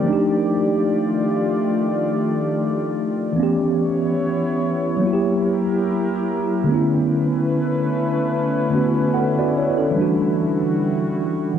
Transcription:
Already playing: tine electric piano D3 G#3 A#3 C4 D#4 G4 C5, ambient pad G4 D5
0.03 tine electric piano F3 A3
0.08 ambient pad D#3 A3 F4, tine electric piano D4 D#4
0.13 tine electric piano G4
3.33 tine electric piano E3 B3
3.37 ambient pad B3 E4 C#5, tine electric piano C#4
3.43 tine electric piano G4
4.97 tine electric piano F#3 A#3
5.02 ambient pad F#3 E4 G4 A#4, tine electric piano E4
5.07 tine electric piano F#4
5.13 tine electric piano G4
6.64 tine electric piano D3 A3, ambient pad D3 A3 C#4 E4 B4
6.69 tine electric piano B3 C#4
6.74 tine electric piano E4
8.70 tine electric piano D3 A3 B3 C#4
8.75 tine electric piano F#4
9.14 tine electric piano A4 F#5
9.39 tine electric piano F#4 D5
9.58 tine electric piano E4 C#5
9.78 tine electric piano C#4 A4
9.91 tine electric piano E3 G3, ambient pad G3 F#4
9.98 tine electric piano D4 F#4
11.54 tine electric piano E3

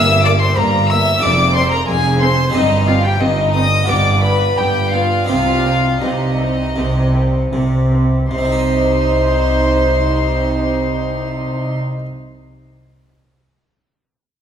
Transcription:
Already playing: double bass section G1, harpsichord G2 A#3 E4 G4, cello section G2, violin section E5 E6, violin E6
0.24 viola section A#3, violin section D5 D6, violin D6
0.41 violin section C5 C6, violin C6
0.57 double bass section G1, harpsichord G2, cello section G2, viola section A#3, violin section A#4 A#5, violin A#5
0.90 viola section A#3, violin section E5 E6, violin E6
1.18 harpsichord C4 F4 G#4, violin section D5, violin D6
1.23 double bass section F1, cello section F2, harpsichord F2, viola section C4, violin section D6
1.55 viola section C4, violin section C5 C6, violin C6
1.72 violin section A#4 A#5, violin A#5
1.88 double bass section F1, cello section F2, harpsichord F2, viola section C4, violin section G#4 G#5, violin G#5
2.21 viola section C4, violin section C5 C6, violin C6
2.50 harpsichord C4 D#4 G4
2.54 double bass section G1, harpsichord G2, cello section G2, viola section C4, violin section D#4 D#5, violin D#5
2.87 viola section C4, violin section F4 F5, violin F5
3.04 violin section G4 G5, violin G5
3.21 double bass section G1, harpsichord G2, cello section G2, viola section C4, violin section D#4 D#5, violin D#5
3.55 viola section C4, violin section D#5 D#6, violin D#6
3.84 harpsichord B3 F4 G4
3.88 double bass section G1, harpsichord G2, cello section G2, viola section B3, violin section D5 D6, violin D6
4.23 viola section B3, violin section B4 B5, violin B5
4.57 double bass section G1, cello section G2, harpsichord G2, viola section B3, violin section G4 G5, violin G5
4.93 viola section B3, violin section F4 F5, violin F5
5.24 double bass section C2, cello section C3, harpsichord C4 D#4 G4, violin section F4
5.28 harpsichord C3, viola section C4, violin F5, violin section F5
5.65 viola section C4
6.01 double bass section C2, cello section C3, harpsichord C3, viola section C4, violin section D#4 D#5, violin D#5
6.39 viola section C4
6.76 double bass section C2, harpsichord C3, cello section C3, viola section C4
7.14 viola section C4
7.52 double bass section C2, cello section C3, harpsichord C3, viola section C4
7.92 viola section C4
8.30 double bass section C2, harpsichord C3, cello section C3, viola section D#4, violin section C5 C6, violin C5
8.38 harpsichord C4
8.45 harpsichord D#4
8.52 harpsichord G4
8.59 harpsichord D#5

